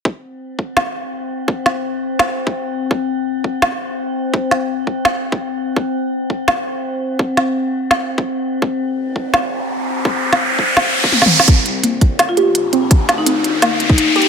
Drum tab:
HH |------------------------------------------------------------------------------------------------|------------------------------------------------------------------------------------------------|------------------------------------------------------------------------------------------------|------------------------------------------------------------------------------------------------|
SD |------------------------------------------------o-----------------------------------------------|------------o-----------------------------------o-----------------------------------------------|------------------------------------------------o-----------------------------------------------|------------o-----------------------------------o-----------------------------------------------|
T1 |------------------------------------------------------------------------------------------------|------------------------------------------------------------------------------------------------|------------------------------------------------------------------------------------------------|------------------------------------------------------------------------------------------------|
T2 |------------------------------------------------------------------------------------------------|------------------------------------------------------------------------------------------------|------------------------------------------------------------------------------------------------|------------------------------------------------------------------------------------------------|
BD |o-----------------------------------o-----------------------------------------------------------|o-----------------------------------------------------------------o-----------------------------|o-----------------------------------o-----------------------------------------------------------|o-----------------------------------o-----------------------------o-----------------------------|

HH |------------------------------------------------------------------------------------------------|------------------------------------------------------------------------------------------------|------------------------------------------------------------------------------------------------|------------------------------------------------------------------------------------------------|
SD |------------------------------------------------o-----------------------------------------------|------------o-----------------------------------o-----------------------------------------------|------------------------------------------------o-----------------------------------------------|------------------o-----------------------------o-----------------------------o-----------o-----|
T1 |------------------------------------------------------------------------------------------------|------------------------------------------------------------------------------------------------|------------------------------------------------------------------------------------------------|------------------------------------------------------------------------o-----------------------|
T2 |------------------------------------------------------------------------------------------------|------------------------------------------------------------------------------------------------|------------------------------------------------------------------------------------------------|---------------------------------------------------------------------------------o--------------|
BD |o-----------------------------------o-----------------------------------------------------------|o-----------------------------------------------------------------o-----------------------------|o-----------------------------------o-----------------------------------------------------------|o-----------------------------------o-----------------------------o-----------o-----------------|

HH |x-----------x-----------x-----------x-----------x-----------x-----------x-----------x-----------|x-----------x-----------x-----------x-----------x-----------x-----------x-----------x---x-------|
SD |------------------------------------------------o-----------------------------------------------|------------o-----------------------------------o-----------------------------------------------|
T1 |------------------------------------------------------------------------------------------------|------------------------------------------------------------------------------------------------|
T2 |------------------------------------------------------------------------------------------------|------------------------------------------------------------------------------------------------|
BD |o-----------------------------------o-----------------------------------------------------------|o-----------------------------------------------------------------o-----------------------------|